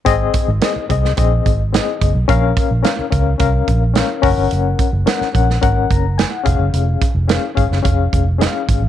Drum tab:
HH |x-x-x-x-x-x-x-x-|x-x-x-x-x-x-x-o-|x-x-x-x-x-x-x-x-|x-x-x-x-x-x-x-x-|
SD |----o--o----o---|----o-------o---|----oo-o----o---|----o--o----o---|
BD |o-o---o-o-o---o-|o-o---o-o-o---o-|--o---o-o-o---o-|--o---o-o-o---o-|